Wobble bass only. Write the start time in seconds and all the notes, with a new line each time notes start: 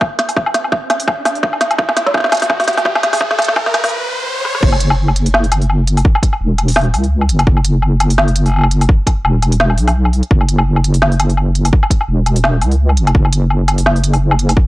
4.63 F#1
6.41 E1
6.94 C#2
7.29 F#1
7.47 F#1
9.25 E1
9.78 B1
10.31 F#1
12.08 E1
12.62 C#2
12.97 F#1
13.15 F#1